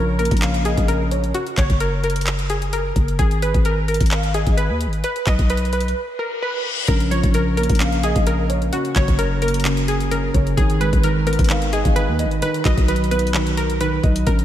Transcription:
Already playing: A#1 C#3 F3 A#4
0.19 A#3 A#4, closed hi-hat
0.25 closed hi-hat
0.31 A#1, kick, closed hi-hat
0.37 closed hi-hat
0.42 C#3 F5, clap, closed hi-hat
0.54 closed hi-hat
0.65 G#4 D#5, closed hi-hat
0.77 A#1, kick, closed hi-hat
0.88 C#3 A#4, closed hi-hat
1.11 C#5, closed hi-hat
1.24 closed hi-hat
1.34 F#4, closed hi-hat
1.47 closed hi-hat
1.57 F#1 C#5, kick, clap, closed hi-hat
1.70 F#1, kick, closed hi-hat
1.80 A#4, closed hi-hat
2.04 A#4, closed hi-hat, open hi-hat
2.10 closed hi-hat
2.16 closed hi-hat
2.21 closed hi-hat
2.27 clap, closed hi-hat
2.39 closed hi-hat
2.50 G#4, closed hi-hat
2.62 closed hi-hat
2.73 A#4, closed hi-hat
2.96 F#1, kick, closed hi-hat
3.08 closed hi-hat
3.19 G#1 G#4, kick, closed hi-hat
3.31 closed hi-hat
3.42 B4, closed hi-hat
3.54 G#1, kick, closed hi-hat
3.65 A#4, closed hi-hat
3.88 A#4, closed hi-hat
3.94 closed hi-hat
4.00 G#1, kick, closed hi-hat
4.06 closed hi-hat
4.11 F5, clap, closed hi-hat
4.23 closed hi-hat
4.34 G#4 D#5, closed hi-hat
4.47 G#1, kick, closed hi-hat
4.57 B4, closed hi-hat
4.70 D#2
4.81 closed hi-hat
4.87 G#1
4.93 closed hi-hat
5.04 B4, closed hi-hat
5.16 closed hi-hat
5.27 B1 D#5, kick, clap, closed hi-hat
5.39 B1, kick, closed hi-hat
5.50 B4, closed hi-hat
5.57 closed hi-hat
5.65 closed hi-hat
5.73 B4, closed hi-hat, open hi-hat
5.81 closed hi-hat
5.88 closed hi-hat
5.96 reverse cymbal
6.19 A#4
6.42 B4
6.88 A#1 C#3 A#4, kick, closed hi-hat
7.00 closed hi-hat
7.11 F3 C#5, closed hi-hat
7.23 A#1, kick, closed hi-hat
7.34 C#3 A#4, closed hi-hat
7.57 A#3 A#4, closed hi-hat
7.63 closed hi-hat
7.69 A#1, kick, closed hi-hat
7.75 closed hi-hat
7.80 C#3 F5, clap, closed hi-hat
7.92 closed hi-hat
8.03 G#4 D#5, closed hi-hat
8.16 A#1, kick, closed hi-hat
8.27 C#3 A#4, closed hi-hat
8.50 C#5, closed hi-hat
8.62 closed hi-hat
8.73 C#3 F#4, closed hi-hat
8.85 closed hi-hat
8.96 F#1 F#3 C#5, kick, clap, closed hi-hat
9.08 F#1, kick, closed hi-hat
9.19 C#3 A#4, closed hi-hat
9.42 A#3 A#4, closed hi-hat, open hi-hat
9.48 closed hi-hat
9.54 closed hi-hat
9.60 closed hi-hat
9.65 C#3, clap, closed hi-hat
9.77 closed hi-hat
9.88 G#4, closed hi-hat
10.00 closed hi-hat
10.11 C#3 A#4, closed hi-hat
10.34 F#1 C#5, kick, closed hi-hat
10.47 closed hi-hat
10.57 G#1 D#3 G#4, kick, closed hi-hat
10.70 closed hi-hat
10.80 G#3 B4, closed hi-hat
10.93 G#1, kick, closed hi-hat
11.04 D#3 A#4, closed hi-hat
11.27 B3 A#4, closed hi-hat
11.33 closed hi-hat
11.39 G#1, kick, closed hi-hat
11.44 closed hi-hat
11.50 D#3 F5, clap, closed hi-hat
11.62 closed hi-hat
11.73 G#4 D#5, closed hi-hat
11.85 G#1, kick, closed hi-hat
11.96 D#3 B4, closed hi-hat
12.08 D#2
12.19 D#5, closed hi-hat
12.25 G#1
12.31 closed hi-hat
12.42 D#3 B4, closed hi-hat
12.54 closed hi-hat
12.65 B1 F#3 D#5, kick, clap, closed hi-hat
12.78 B1, kick, closed hi-hat
12.88 D#3 B4, closed hi-hat
12.96 closed hi-hat
13.04 closed hi-hat
13.11 B3 B4, closed hi-hat, open hi-hat
13.19 closed hi-hat
13.27 closed hi-hat
13.34 D#3, clap, closed hi-hat
13.47 closed hi-hat
13.57 A#4, closed hi-hat
13.70 closed hi-hat
13.80 D#3 B4, closed hi-hat
14.03 B1 D#5, kick, closed hi-hat
14.16 closed hi-hat
14.27 A#1 C#3 A#4, kick, closed hi-hat
14.39 closed hi-hat

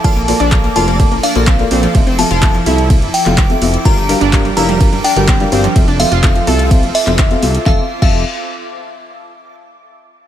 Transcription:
Already playing: D6
0.04 A#1 F3 A#3 F4 A4 D5 A5, kick, closed hi-hat, ride
0.16 A#3, closed hi-hat
0.28 A#3 F4 A4 D5, open hi-hat
0.40 A#1 D4, closed hi-hat
0.52 A#3 F4 A4 D5, kick, clap, closed hi-hat, ride
0.64 A#3, closed hi-hat
0.76 F1 A#3 F4 A4 D5 A5, open hi-hat
0.88 A#3, closed hi-hat
1.00 A#3 F4 A4 D5, kick, closed hi-hat, ride
1.12 A#1 A#3, closed hi-hat
1.23 D4 F5, open hi-hat
1.35 A#1 A#3 F4 A4 F5, closed hi-hat
1.47 C4, kick, clap, closed hi-hat, ride
1.59 A#3 F4 A4 D5, closed hi-hat
1.71 A#1 A#3 C4 F4 A4 D5, open hi-hat
1.83 F3, closed hi-hat
1.95 F1 F3 C4 E4 F4 A4 E5, kick, closed hi-hat, ride
2.07 C4, closed hi-hat
2.19 F3 C4 F4 A4 E5 A5, open hi-hat
2.31 F1 F4, closed hi-hat
2.42 F3 C4 F4 A4 E5, kick, clap, closed hi-hat, ride
2.54 F3, closed hi-hat
2.66 C2 C4 E4 F4 A4 E5, open hi-hat
2.78 closed hi-hat
2.90 C4 F4 A4 E5, kick, closed hi-hat, ride
3.02 F1, closed hi-hat
3.14 G5, open hi-hat
3.26 F1 C4 F4 A4 F5, clap, closed hi-hat
3.38 kick, clap, closed hi-hat, ride
3.50 C4 F4 A4 E5, closed hi-hat
3.61 F1 C4 F4 A4 E5, open hi-hat
3.74 closed hi-hat
3.85 G1 G3 D4 F4 G4 A#4 F5 A#5, kick, closed hi-hat, ride
3.97 G3, closed hi-hat
4.09 G3 D4 G4 A#4 F5, open hi-hat
4.21 G1 D4, closed hi-hat
4.33 G3 D4 G4 A#4 F5, kick, clap, closed hi-hat, ride
4.45 G3, closed hi-hat
4.57 F1 D4 E4 G4 A#4 F5 A#5, open hi-hat
4.69 G3, closed hi-hat
4.81 G3 D4 G4 A#4 F5, kick, closed hi-hat, ride
4.93 G1 G3, closed hi-hat
5.04 D4 G5, open hi-hat
5.16 G1 G3 D4 G4 A#4 G5, closed hi-hat
5.28 C4, kick, clap, closed hi-hat, ride
5.40 G3 D4 G4 A#4 F5, closed hi-hat
5.52 G1 C4 D4 G4 A#4 F5, open hi-hat
5.64 F3, closed hi-hat
5.76 F1 F3 C4 F4 A4 E5, kick, closed hi-hat, ride
5.88 D4, closed hi-hat
6.00 F3 C4 F4 A4 E5 F5, open hi-hat
6.12 F1 F4, closed hi-hat
6.23 F3 C4 F4 A4 E5, kick, clap, closed hi-hat, ride
6.35 F3, closed hi-hat
6.47 C2 C4 F4 A4 E5, open hi-hat
6.59 closed hi-hat
6.71 C4 F4 A4 E5, kick, closed hi-hat, ride
6.83 F1, closed hi-hat
6.95 E5, open hi-hat
7.07 F1 C4 F4 A4 E5, clap, closed hi-hat
7.19 kick, clap, closed hi-hat, ride
7.31 C4 F4 A4 F5, closed hi-hat
7.42 C2 C4 F4 A4 E5, open hi-hat
7.55 closed hi-hat
7.66 F1 C4 F4 A4 C5 E5 F5 A5, kick, snare
8.02 F1 C4 F4 A4 E5 F5, kick, crash

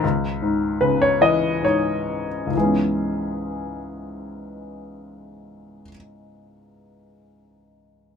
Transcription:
0.03 C#2
0.42 G#2
0.81 C#3 B4
1.02 C#5
1.21 E3 D#5
1.62 G#2 C#5
2.47 C#2 G#2
2.54 E3 G#3 G#4
2.60 B3 C#4

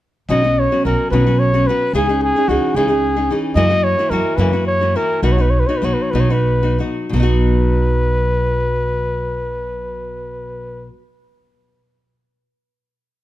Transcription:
0.29 B1 B2 D#3 F#3 B3 C#4 F#4 D#5
0.44 F#3 B3 C#4 F#4
0.59 C#5
0.72 F#3 B3 C#4 F#4
0.85 B1 F#3 B3 C#4 F#4 A#4
1.11 B1 B2 D#3 F#3 B3 C#4 F#4 B4
1.27 F#3 B3 C#4 F#4
1.39 C#5
1.54 F#3 B3 C#4 F#4
1.67 F#3 B3 C#4 F#4 B4
1.93 C#2 C#3 E3 C#4 D#4 G#4
2.09 C#4 D#4 G#4
2.23 G#4
2.36 C#4 D#4 G#4
2.48 C#2 E3 C#4 D#4 F#4 G#4
2.74 C#2 C#3 E3 C#4 D#4 G#4
2.88 C#4 D#4 G#4
3.16 C#4 D#4 G#4
3.31 E3 C#4 D#4 G#4
3.55 F#2 C#3 E3 A#3 E4 F#4 D#5
3.70 E3 A#3 E4 F#4
3.83 C#5
3.99 E3 A#3 E4 F#4
4.10 F#2 E3 A#3 E4 F#4 A#4
4.36 F#2 C#3 E3 A#3 E4 F#4 B4
4.53 E3 A#3 E4 F#4
4.67 C#5
4.81 E3 A#3 E4 F#4
4.96 E3 A#3 E4 F#4 A#4
5.22 B1 B2 F#3 B3 D#4 F#4 B4
5.32 C#5
5.38 B3 D#4 F#4 B4
5.50 C#5
5.59 B4
5.67 B3 D#4 F#4 C#5
5.77 B4
5.82 B1 F#3 B3 D#4 F#4 C#5
5.93 B4
6.02 C#5
6.11 B1 B4
6.15 B2 F#3 B3 D#4 F#4
6.20 C#5
6.30 B3 D#4 F#4 B4
6.63 B3 D#4 F#4
6.78 F#3 B3 D#4 F#4
7.09 B1 B2 F#3 B4
7.16 B3 D#4
7.23 F#4

